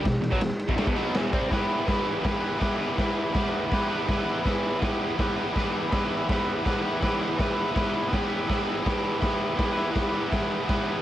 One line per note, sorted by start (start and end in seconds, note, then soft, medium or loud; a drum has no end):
0.03 0.18 E2 medium
0.03 0.19 B2 medium
0.03 kick loud
0.03 snare loud
0.03 ride loud
0.22 0.31 E2 medium
0.22 0.30 B2 medium
0.22 ride medium
0.31 0.40 B2 medium
0.31 0.41 F#3 loud
0.31 kick loud
0.41 0.49 E2 medium
0.41 0.51 B2 medium
0.41 snare loud
0.41 ride loud
0.50 muted overdriven electric guitar stroke medium
0.59 ride medium
0.68 0.77 E2 medium
0.68 0.76 B2 loud
0.68 kick loud
0.77 0.86 D3 medium
0.77 0.87 A3 medium
0.77 snare loud
0.77 ride loud
0.87 0.95 E2 medium
0.87 0.94 B2 medium
0.87 kick loud
0.95 1.13 B2 medium
0.95 1.14 F#3 medium
0.95 1.14 B3 medium
0.95 ride medium
1.14 1.32 E2 loud
1.14 1.32 B2 medium
1.14 1.33 E3 loud
1.14 snare loud
1.14 ride medium
1.32 1.49 C3 medium
1.32 1.50 G3 loud
1.32 1.51 C4 loud
1.32 kick loud
1.32 ride medium
1.50 2.57 E3 medium
1.50 1.86 B3 medium
1.50 1.88 E4 medium
1.50 1.89 G4 loud
1.50 kick loud
1.50 snare loud
1.50 open hi-hat medium
1.54 1.91 B4 medium
1.86 2.22 B3 medium
1.86 2.24 E4 medium
1.86 2.25 G4 medium
1.86 kick loud
1.86 snare loud
1.86 open hi-hat medium
1.91 2.27 B4 medium
2.23 2.58 B3 medium
2.23 2.44 E4 medium
2.23 2.42 G4 medium
2.23 kick loud
2.23 snare loud
2.23 open hi-hat medium
2.27 2.40 B4 medium
2.40 2.60 G4 medium
2.40 2.62 B4 medium
2.45 2.60 E4 medium
2.58 2.95 E3 medium
2.58 2.96 B3 medium
2.58 2.82 E4 medium
2.58 2.79 G4 loud
2.58 kick loud
2.58 open hi-hat medium
2.62 2.77 B4 medium
2.62 snare loud
2.78 2.99 G4 medium
2.78 3.00 B4 medium
2.82 2.98 E4 medium
2.95 4.06 E3 medium
2.95 3.32 B3 medium
2.95 3.33 E4 medium
2.95 kick loud
2.95 open hi-hat medium
2.99 3.35 G4 medium
2.99 3.37 B4 loud
2.99 snare loud
3.33 3.69 B3 medium
3.33 3.71 E4 medium
3.33 3.73 G4 medium
3.33 kick loud
3.33 snare loud
3.33 open hi-hat medium
3.37 3.74 B4 medium
3.69 4.08 B3 medium
3.69 3.92 E4 medium
3.69 3.91 G4 medium
3.69 kick loud
3.69 snare loud
3.69 open hi-hat medium
3.74 3.88 B4 medium
3.89 4.10 G4 medium
3.89 4.11 B4 medium
3.93 4.08 E4 medium
4.06 4.43 E3 medium
4.06 4.45 B3 loud
4.06 4.29 E4 medium
4.06 4.27 G4 medium
4.06 kick loud
4.06 snare loud
4.06 open hi-hat soft
4.11 4.24 B4 loud
4.25 4.47 G4 medium
4.25 4.47 B4 medium
4.30 4.45 E4 medium
4.43 5.52 E3 medium
4.43 4.79 B3 medium
4.43 4.82 E4 medium
4.43 kick loud
4.43 snare loud
4.43 open hi-hat medium
4.47 4.83 G4 medium
4.47 4.84 B4 medium
4.80 5.16 B3 medium
4.80 5.18 E4 medium
4.80 5.19 G4 medium
4.80 kick loud
4.80 snare loud
4.80 open hi-hat medium
4.84 5.21 B4 medium
5.16 5.54 B3 medium
5.16 5.40 E4 medium
5.16 5.38 G4 medium
5.16 kick loud
5.16 snare loud
5.16 open hi-hat medium
5.21 5.36 B4 medium
5.36 5.57 G4 medium
5.36 5.58 B4 medium
5.41 5.55 E4 medium
5.53 5.90 E3 medium
5.53 5.91 B3 medium
5.53 5.76 E4 medium
5.53 kick loud
5.53 open hi-hat medium
5.57 5.74 G4 medium
5.57 5.71 B4 loud
5.57 snare medium
5.72 5.93 G4 medium
5.72 5.94 B4 medium
5.76 5.92 E4 medium
5.91 6.99 E3 medium
5.91 6.27 B3 medium
5.91 6.29 E4 medium
5.91 6.31 G4 medium
5.91 kick loud
5.91 snare loud
5.91 open hi-hat medium
5.95 6.32 B4 loud
6.28 6.63 B3 medium
6.28 6.65 E4 medium
6.28 6.66 G4 medium
6.28 kick loud
6.28 snare loud
6.28 open hi-hat medium
6.32 6.67 B4 medium
6.63 7.00 B3 medium
6.63 6.86 E4 medium
6.63 6.84 G4 medium
6.63 6.81 B4 medium
6.63 kick loud
6.63 snare loud
6.63 open hi-hat medium
6.82 7.03 G4 medium
6.82 7.04 B4 medium
6.86 7.01 E4 medium
7.00 7.36 E3 medium
7.00 7.37 B3 loud
7.00 7.23 E4 medium
7.00 7.21 G4 medium
7.00 kick loud
7.00 open hi-hat medium
7.04 7.18 B4 loud
7.04 snare loud
7.19 7.39 G4 medium
7.19 7.40 B4 medium
7.23 7.38 E4 medium
7.36 8.46 E3 medium
7.36 7.73 B3 medium
7.36 7.75 E4 medium
7.36 7.77 G4 loud
7.36 kick loud
7.36 open hi-hat medium
7.40 7.78 B4 loud
7.40 snare loud
7.73 8.08 B3 medium
7.73 8.10 E4 medium
7.73 8.12 G4 medium
7.73 kick loud
7.73 snare loud
7.73 open hi-hat medium
7.78 8.13 B4 medium
8.08 8.47 B3 medium
8.08 8.31 E4 medium
8.08 8.29 G4 medium
8.13 8.26 B4 medium
8.13 kick loud
8.13 snare loud
8.13 open hi-hat medium
8.26 8.49 G4 medium
8.26 8.50 B4 medium
8.32 8.49 E4 medium
8.46 8.82 E3 medium
8.46 8.84 B3 medium
8.46 8.68 E4 loud
8.46 8.65 G4 medium
8.46 kick loud
8.46 open hi-hat medium
8.51 8.63 B4 medium
8.51 snare loud
8.64 8.87 G4 medium
8.64 8.87 B4 medium
8.68 8.85 E4 medium
8.83 9.90 E3 medium
8.83 9.18 B3 medium
8.83 9.21 E4 loud
8.83 kick loud
8.83 open hi-hat medium
8.87 9.22 G4 loud
8.87 9.23 B4 medium
8.87 snare loud
9.19 9.54 B3 medium
9.19 9.57 E4 medium
9.19 9.58 G4 medium
9.19 kick loud
9.19 open hi-hat medium
9.23 9.59 B4 medium
9.23 snare loud
9.55 9.92 B3 medium
9.55 9.77 E4 medium
9.55 9.75 G4 medium
9.59 9.72 B4 medium
9.59 kick loud
9.59 snare loud
9.59 open hi-hat medium
9.73 9.94 G4 medium
9.73 9.95 B4 medium
9.77 9.93 E4 medium
9.91 10.29 E3 medium
9.91 10.30 B3 medium
9.91 10.13 E4 loud
9.91 10.12 G4 loud
9.96 10.09 B4 loud
9.96 kick loud
9.96 snare loud
9.96 open hi-hat medium
10.09 10.32 G4 medium
10.09 10.33 B4 medium
10.14 10.31 E4 medium
10.29 11.02 E3 medium
10.29 10.65 B3 loud
10.29 10.67 E4 loud
10.29 10.68 G4 medium
10.29 kick loud
10.29 open hi-hat medium
10.33 10.70 B4 medium
10.33 snare loud
10.65 11.00 B3 medium
10.65 11.02 E4 medium
10.65 11.02 G4 medium
10.65 kick loud
10.65 open hi-hat medium
10.70 11.02 B4 medium
10.70 snare loud